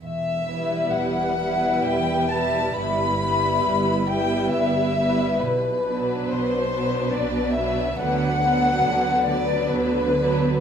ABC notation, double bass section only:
X:1
M:3/4
L:1/8
Q:1/4=68
K:Em
V:1 name="Double bass section" clef=bass
E,,,2 E,,,2 E,,,2 | G,,,2 G,,,2 G,,,2 | B,,,2 B,,,2 B,,,2 | D,,2 D,,2 D,,2 |]